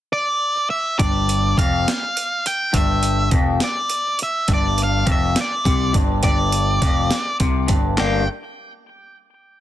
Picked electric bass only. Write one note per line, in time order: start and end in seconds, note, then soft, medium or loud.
1.00 1.54 G1 medium
1.57 1.85 F1 medium
2.74 3.29 G1 medium
3.32 3.60 F1 medium
4.48 5.03 G1 medium
5.07 5.34 F1 medium
5.65 5.93 C2 medium
5.95 6.22 G1 medium
6.23 6.78 G1 medium
6.82 7.09 F1 medium
7.40 7.68 C2 medium
7.69 7.97 G1 medium
8.00 8.26 G1 medium